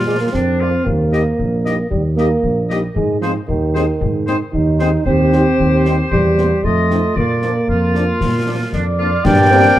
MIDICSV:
0, 0, Header, 1, 9, 480
1, 0, Start_track
1, 0, Tempo, 524017
1, 787, Time_signature, 2, 2, 24, 8
1, 8969, End_track
2, 0, Start_track
2, 0, Title_t, "Flute section"
2, 0, Program_c, 0, 73
2, 7986, Note_on_c, 0, 74, 61
2, 8434, Note_off_c, 0, 74, 0
2, 8467, Note_on_c, 0, 79, 100
2, 8969, Note_off_c, 0, 79, 0
2, 8969, End_track
3, 0, Start_track
3, 0, Title_t, "Cornet"
3, 0, Program_c, 1, 56
3, 76, Note_on_c, 1, 74, 31
3, 161, Note_off_c, 1, 74, 0
3, 551, Note_on_c, 1, 74, 29
3, 637, Note_off_c, 1, 74, 0
3, 1025, Note_on_c, 1, 75, 34
3, 1112, Note_off_c, 1, 75, 0
3, 1509, Note_on_c, 1, 75, 33
3, 1596, Note_off_c, 1, 75, 0
3, 1989, Note_on_c, 1, 75, 34
3, 2075, Note_off_c, 1, 75, 0
3, 2468, Note_on_c, 1, 75, 36
3, 2555, Note_off_c, 1, 75, 0
3, 2951, Note_on_c, 1, 72, 37
3, 3037, Note_off_c, 1, 72, 0
3, 3437, Note_on_c, 1, 72, 42
3, 3522, Note_off_c, 1, 72, 0
3, 3913, Note_on_c, 1, 72, 41
3, 3999, Note_off_c, 1, 72, 0
3, 4392, Note_on_c, 1, 72, 42
3, 4478, Note_off_c, 1, 72, 0
3, 4879, Note_on_c, 1, 72, 41
3, 4964, Note_off_c, 1, 72, 0
3, 5371, Note_on_c, 1, 72, 42
3, 5453, Note_off_c, 1, 72, 0
3, 5851, Note_on_c, 1, 72, 42
3, 5933, Note_off_c, 1, 72, 0
3, 6325, Note_on_c, 1, 72, 31
3, 6408, Note_off_c, 1, 72, 0
3, 6813, Note_on_c, 1, 74, 30
3, 6895, Note_off_c, 1, 74, 0
3, 7281, Note_on_c, 1, 74, 30
3, 7365, Note_off_c, 1, 74, 0
3, 7756, Note_on_c, 1, 74, 26
3, 7841, Note_off_c, 1, 74, 0
3, 8010, Note_on_c, 1, 74, 72
3, 8472, Note_on_c, 1, 79, 110
3, 8486, Note_off_c, 1, 74, 0
3, 8969, Note_off_c, 1, 79, 0
3, 8969, End_track
4, 0, Start_track
4, 0, Title_t, "Woodwind section"
4, 0, Program_c, 2, 71
4, 0, Note_on_c, 2, 65, 45
4, 274, Note_off_c, 2, 65, 0
4, 310, Note_on_c, 2, 62, 36
4, 549, Note_off_c, 2, 62, 0
4, 554, Note_on_c, 2, 65, 37
4, 791, Note_off_c, 2, 65, 0
4, 1025, Note_on_c, 2, 67, 37
4, 1025, Note_on_c, 2, 75, 37
4, 1112, Note_off_c, 2, 67, 0
4, 1112, Note_off_c, 2, 75, 0
4, 1507, Note_on_c, 2, 67, 36
4, 1507, Note_on_c, 2, 75, 37
4, 1593, Note_off_c, 2, 67, 0
4, 1594, Note_off_c, 2, 75, 0
4, 1997, Note_on_c, 2, 67, 38
4, 1998, Note_on_c, 2, 75, 36
4, 2081, Note_off_c, 2, 67, 0
4, 2082, Note_off_c, 2, 75, 0
4, 2466, Note_on_c, 2, 67, 39
4, 2467, Note_on_c, 2, 75, 40
4, 2553, Note_off_c, 2, 67, 0
4, 2554, Note_off_c, 2, 75, 0
4, 2950, Note_on_c, 2, 68, 41
4, 2950, Note_on_c, 2, 72, 40
4, 3036, Note_off_c, 2, 72, 0
4, 3037, Note_off_c, 2, 68, 0
4, 3426, Note_on_c, 2, 68, 44
4, 3426, Note_on_c, 2, 72, 44
4, 3514, Note_off_c, 2, 68, 0
4, 3514, Note_off_c, 2, 72, 0
4, 3913, Note_on_c, 2, 68, 44
4, 3914, Note_on_c, 2, 72, 46
4, 3999, Note_off_c, 2, 68, 0
4, 3999, Note_off_c, 2, 72, 0
4, 4393, Note_on_c, 2, 72, 47
4, 4395, Note_on_c, 2, 68, 47
4, 4479, Note_off_c, 2, 72, 0
4, 4481, Note_off_c, 2, 68, 0
4, 4634, Note_on_c, 2, 67, 53
4, 4634, Note_on_c, 2, 72, 56
4, 5556, Note_off_c, 2, 72, 0
4, 5557, Note_off_c, 2, 67, 0
4, 5593, Note_on_c, 2, 72, 52
4, 5595, Note_on_c, 2, 67, 46
4, 6039, Note_off_c, 2, 72, 0
4, 6040, Note_off_c, 2, 67, 0
4, 6083, Note_on_c, 2, 65, 40
4, 6084, Note_on_c, 2, 75, 42
4, 6551, Note_off_c, 2, 65, 0
4, 6558, Note_off_c, 2, 75, 0
4, 6562, Note_on_c, 2, 65, 36
4, 6563, Note_on_c, 2, 74, 37
4, 6959, Note_off_c, 2, 65, 0
4, 6989, Note_off_c, 2, 74, 0
4, 7040, Note_on_c, 2, 65, 44
4, 7958, Note_off_c, 2, 65, 0
4, 7997, Note_on_c, 2, 62, 31
4, 8103, Note_off_c, 2, 62, 0
4, 8233, Note_on_c, 2, 65, 43
4, 8454, Note_off_c, 2, 65, 0
4, 8477, Note_on_c, 2, 70, 75
4, 8481, Note_on_c, 2, 74, 80
4, 8969, Note_off_c, 2, 70, 0
4, 8969, Note_off_c, 2, 74, 0
4, 8969, End_track
5, 0, Start_track
5, 0, Title_t, "Trombone section"
5, 0, Program_c, 3, 61
5, 8459, Note_on_c, 3, 58, 78
5, 8459, Note_on_c, 3, 62, 75
5, 8969, Note_off_c, 3, 58, 0
5, 8969, Note_off_c, 3, 62, 0
5, 8969, End_track
6, 0, Start_track
6, 0, Title_t, "Euphonium"
6, 0, Program_c, 4, 58
6, 56, Note_on_c, 4, 56, 45
6, 172, Note_off_c, 4, 56, 0
6, 180, Note_on_c, 4, 58, 43
6, 289, Note_off_c, 4, 58, 0
6, 295, Note_on_c, 4, 60, 53
6, 777, Note_on_c, 4, 58, 52
6, 791, Note_off_c, 4, 60, 0
6, 1734, Note_off_c, 4, 58, 0
6, 1740, Note_on_c, 4, 55, 54
6, 1850, Note_off_c, 4, 55, 0
6, 1977, Note_on_c, 4, 58, 57
6, 2418, Note_off_c, 4, 58, 0
6, 2707, Note_on_c, 4, 56, 60
6, 2932, Note_off_c, 4, 56, 0
6, 2942, Note_on_c, 4, 53, 54
6, 3052, Note_off_c, 4, 53, 0
6, 3185, Note_on_c, 4, 51, 50
6, 3872, Note_off_c, 4, 51, 0
6, 4154, Note_on_c, 4, 63, 75
6, 4599, Note_off_c, 4, 63, 0
6, 4637, Note_on_c, 4, 60, 79
6, 5558, Note_off_c, 4, 60, 0
6, 5605, Note_on_c, 4, 55, 61
6, 6090, Note_on_c, 4, 57, 58
6, 6103, Note_off_c, 4, 55, 0
6, 6556, Note_off_c, 4, 57, 0
6, 6562, Note_on_c, 4, 58, 54
6, 8198, Note_off_c, 4, 58, 0
6, 8476, Note_on_c, 4, 62, 79
6, 8582, Note_off_c, 4, 62, 0
6, 8703, Note_on_c, 4, 60, 82
6, 8969, Note_off_c, 4, 60, 0
6, 8969, End_track
7, 0, Start_track
7, 0, Title_t, "French horn section"
7, 0, Program_c, 5, 60
7, 69, Note_on_c, 5, 65, 32
7, 70, Note_on_c, 5, 53, 33
7, 73, Note_on_c, 5, 58, 33
7, 155, Note_off_c, 5, 65, 0
7, 156, Note_off_c, 5, 53, 0
7, 158, Note_off_c, 5, 58, 0
7, 552, Note_on_c, 5, 65, 31
7, 554, Note_on_c, 5, 58, 32
7, 555, Note_on_c, 5, 53, 31
7, 638, Note_off_c, 5, 65, 0
7, 639, Note_off_c, 5, 58, 0
7, 640, Note_off_c, 5, 53, 0
7, 1026, Note_on_c, 5, 55, 34
7, 1028, Note_on_c, 5, 58, 39
7, 1028, Note_on_c, 5, 63, 36
7, 1113, Note_off_c, 5, 55, 0
7, 1114, Note_off_c, 5, 58, 0
7, 1114, Note_off_c, 5, 63, 0
7, 1514, Note_on_c, 5, 55, 37
7, 1516, Note_on_c, 5, 58, 38
7, 1516, Note_on_c, 5, 63, 36
7, 1599, Note_off_c, 5, 55, 0
7, 1601, Note_off_c, 5, 58, 0
7, 1601, Note_off_c, 5, 63, 0
7, 1996, Note_on_c, 5, 58, 39
7, 1997, Note_on_c, 5, 55, 41
7, 1997, Note_on_c, 5, 63, 39
7, 2081, Note_off_c, 5, 58, 0
7, 2082, Note_off_c, 5, 55, 0
7, 2082, Note_off_c, 5, 63, 0
7, 2477, Note_on_c, 5, 55, 40
7, 2477, Note_on_c, 5, 58, 39
7, 2478, Note_on_c, 5, 63, 39
7, 2562, Note_off_c, 5, 55, 0
7, 2562, Note_off_c, 5, 58, 0
7, 2562, Note_off_c, 5, 63, 0
7, 2955, Note_on_c, 5, 56, 40
7, 2957, Note_on_c, 5, 60, 41
7, 2958, Note_on_c, 5, 63, 40
7, 3040, Note_off_c, 5, 56, 0
7, 3042, Note_off_c, 5, 60, 0
7, 3043, Note_off_c, 5, 63, 0
7, 3431, Note_on_c, 5, 60, 46
7, 3434, Note_on_c, 5, 56, 44
7, 3434, Note_on_c, 5, 63, 46
7, 3518, Note_off_c, 5, 60, 0
7, 3519, Note_off_c, 5, 56, 0
7, 3520, Note_off_c, 5, 63, 0
7, 3910, Note_on_c, 5, 63, 44
7, 3911, Note_on_c, 5, 56, 44
7, 3912, Note_on_c, 5, 60, 48
7, 3997, Note_off_c, 5, 56, 0
7, 3997, Note_off_c, 5, 63, 0
7, 3998, Note_off_c, 5, 60, 0
7, 4396, Note_on_c, 5, 56, 51
7, 4396, Note_on_c, 5, 63, 51
7, 4398, Note_on_c, 5, 60, 47
7, 4481, Note_off_c, 5, 56, 0
7, 4481, Note_off_c, 5, 63, 0
7, 4483, Note_off_c, 5, 60, 0
7, 4881, Note_on_c, 5, 55, 44
7, 4881, Note_on_c, 5, 63, 45
7, 4882, Note_on_c, 5, 60, 45
7, 4965, Note_off_c, 5, 63, 0
7, 4966, Note_off_c, 5, 55, 0
7, 4966, Note_off_c, 5, 60, 0
7, 5361, Note_on_c, 5, 55, 48
7, 5363, Note_on_c, 5, 60, 46
7, 5365, Note_on_c, 5, 63, 48
7, 5445, Note_off_c, 5, 55, 0
7, 5447, Note_off_c, 5, 60, 0
7, 5448, Note_off_c, 5, 63, 0
7, 5843, Note_on_c, 5, 55, 41
7, 5845, Note_on_c, 5, 58, 43
7, 5847, Note_on_c, 5, 60, 44
7, 5927, Note_off_c, 5, 55, 0
7, 5929, Note_off_c, 5, 58, 0
7, 5930, Note_off_c, 5, 60, 0
7, 6321, Note_on_c, 5, 53, 37
7, 6321, Note_on_c, 5, 60, 39
7, 6323, Note_on_c, 5, 63, 37
7, 6405, Note_off_c, 5, 53, 0
7, 6405, Note_off_c, 5, 60, 0
7, 6407, Note_off_c, 5, 63, 0
7, 6801, Note_on_c, 5, 62, 31
7, 6803, Note_on_c, 5, 53, 34
7, 6803, Note_on_c, 5, 58, 33
7, 6885, Note_off_c, 5, 62, 0
7, 6887, Note_off_c, 5, 53, 0
7, 6887, Note_off_c, 5, 58, 0
7, 7282, Note_on_c, 5, 53, 35
7, 7283, Note_on_c, 5, 62, 33
7, 7285, Note_on_c, 5, 58, 34
7, 7366, Note_off_c, 5, 53, 0
7, 7366, Note_off_c, 5, 62, 0
7, 7368, Note_off_c, 5, 58, 0
7, 7753, Note_on_c, 5, 53, 31
7, 7754, Note_on_c, 5, 58, 30
7, 7754, Note_on_c, 5, 62, 31
7, 7838, Note_off_c, 5, 53, 0
7, 7839, Note_off_c, 5, 58, 0
7, 7839, Note_off_c, 5, 62, 0
7, 8230, Note_on_c, 5, 53, 30
7, 8230, Note_on_c, 5, 58, 30
7, 8232, Note_on_c, 5, 62, 33
7, 8316, Note_off_c, 5, 53, 0
7, 8316, Note_off_c, 5, 58, 0
7, 8318, Note_off_c, 5, 62, 0
7, 8714, Note_on_c, 5, 58, 71
7, 8715, Note_on_c, 5, 62, 65
7, 8715, Note_on_c, 5, 67, 68
7, 8799, Note_off_c, 5, 58, 0
7, 8799, Note_off_c, 5, 67, 0
7, 8800, Note_off_c, 5, 62, 0
7, 8969, End_track
8, 0, Start_track
8, 0, Title_t, "Tuba"
8, 0, Program_c, 6, 58
8, 0, Note_on_c, 6, 46, 38
8, 227, Note_off_c, 6, 46, 0
8, 311, Note_on_c, 6, 41, 38
8, 709, Note_off_c, 6, 41, 0
8, 788, Note_on_c, 6, 39, 47
8, 1188, Note_off_c, 6, 39, 0
8, 1270, Note_on_c, 6, 34, 44
8, 1669, Note_off_c, 6, 34, 0
8, 1747, Note_on_c, 6, 39, 46
8, 2148, Note_off_c, 6, 39, 0
8, 2225, Note_on_c, 6, 34, 45
8, 2627, Note_off_c, 6, 34, 0
8, 2713, Note_on_c, 6, 44, 50
8, 3111, Note_off_c, 6, 44, 0
8, 3197, Note_on_c, 6, 39, 52
8, 3593, Note_off_c, 6, 39, 0
8, 3672, Note_on_c, 6, 44, 57
8, 4035, Note_off_c, 6, 44, 0
8, 4155, Note_on_c, 6, 39, 52
8, 4553, Note_off_c, 6, 39, 0
8, 4634, Note_on_c, 6, 39, 60
8, 5032, Note_off_c, 6, 39, 0
8, 5114, Note_on_c, 6, 39, 60
8, 5513, Note_off_c, 6, 39, 0
8, 5592, Note_on_c, 6, 40, 54
8, 5992, Note_off_c, 6, 40, 0
8, 6080, Note_on_c, 6, 41, 48
8, 6476, Note_off_c, 6, 41, 0
8, 6556, Note_on_c, 6, 46, 41
8, 6954, Note_off_c, 6, 46, 0
8, 7038, Note_on_c, 6, 41, 40
8, 7434, Note_off_c, 6, 41, 0
8, 7519, Note_on_c, 6, 46, 38
8, 7915, Note_off_c, 6, 46, 0
8, 7992, Note_on_c, 6, 41, 47
8, 8390, Note_off_c, 6, 41, 0
8, 8471, Note_on_c, 6, 43, 86
8, 8869, Note_off_c, 6, 43, 0
8, 8969, End_track
9, 0, Start_track
9, 0, Title_t, "Drums"
9, 309, Note_on_c, 9, 35, 47
9, 309, Note_on_c, 9, 38, 35
9, 400, Note_off_c, 9, 35, 0
9, 400, Note_off_c, 9, 38, 0
9, 793, Note_on_c, 9, 35, 59
9, 884, Note_off_c, 9, 35, 0
9, 1035, Note_on_c, 9, 38, 27
9, 1127, Note_off_c, 9, 38, 0
9, 1277, Note_on_c, 9, 35, 53
9, 1369, Note_off_c, 9, 35, 0
9, 1518, Note_on_c, 9, 38, 29
9, 1610, Note_off_c, 9, 38, 0
9, 1753, Note_on_c, 9, 35, 58
9, 1844, Note_off_c, 9, 35, 0
9, 1996, Note_on_c, 9, 38, 27
9, 2087, Note_off_c, 9, 38, 0
9, 2229, Note_on_c, 9, 35, 52
9, 2321, Note_off_c, 9, 35, 0
9, 2476, Note_on_c, 9, 38, 28
9, 2568, Note_off_c, 9, 38, 0
9, 2712, Note_on_c, 9, 35, 60
9, 2804, Note_off_c, 9, 35, 0
9, 2951, Note_on_c, 9, 38, 28
9, 3043, Note_off_c, 9, 38, 0
9, 3193, Note_on_c, 9, 35, 54
9, 3284, Note_off_c, 9, 35, 0
9, 3438, Note_on_c, 9, 38, 31
9, 3530, Note_off_c, 9, 38, 0
9, 3675, Note_on_c, 9, 35, 62
9, 3767, Note_off_c, 9, 35, 0
9, 3912, Note_on_c, 9, 38, 28
9, 4004, Note_off_c, 9, 38, 0
9, 4153, Note_on_c, 9, 35, 53
9, 4245, Note_off_c, 9, 35, 0
9, 4392, Note_on_c, 9, 38, 32
9, 4483, Note_off_c, 9, 38, 0
9, 4632, Note_on_c, 9, 35, 61
9, 4724, Note_off_c, 9, 35, 0
9, 4877, Note_on_c, 9, 38, 30
9, 4969, Note_off_c, 9, 38, 0
9, 5125, Note_on_c, 9, 35, 51
9, 5216, Note_off_c, 9, 35, 0
9, 5362, Note_on_c, 9, 38, 32
9, 5453, Note_off_c, 9, 38, 0
9, 5601, Note_on_c, 9, 35, 63
9, 5692, Note_off_c, 9, 35, 0
9, 5843, Note_on_c, 9, 38, 26
9, 5935, Note_off_c, 9, 38, 0
9, 6077, Note_on_c, 9, 35, 53
9, 6169, Note_off_c, 9, 35, 0
9, 6325, Note_on_c, 9, 38, 28
9, 6417, Note_off_c, 9, 38, 0
9, 6560, Note_on_c, 9, 35, 58
9, 6652, Note_off_c, 9, 35, 0
9, 6796, Note_on_c, 9, 38, 24
9, 6888, Note_off_c, 9, 38, 0
9, 7036, Note_on_c, 9, 35, 49
9, 7128, Note_off_c, 9, 35, 0
9, 7281, Note_on_c, 9, 38, 29
9, 7373, Note_off_c, 9, 38, 0
9, 7519, Note_on_c, 9, 35, 57
9, 7519, Note_on_c, 9, 38, 44
9, 7611, Note_off_c, 9, 35, 0
9, 7611, Note_off_c, 9, 38, 0
9, 7994, Note_on_c, 9, 35, 49
9, 7994, Note_on_c, 9, 38, 37
9, 8086, Note_off_c, 9, 35, 0
9, 8086, Note_off_c, 9, 38, 0
9, 8472, Note_on_c, 9, 35, 82
9, 8472, Note_on_c, 9, 38, 64
9, 8472, Note_on_c, 9, 49, 54
9, 8563, Note_off_c, 9, 35, 0
9, 8563, Note_off_c, 9, 38, 0
9, 8563, Note_off_c, 9, 49, 0
9, 8969, End_track
0, 0, End_of_file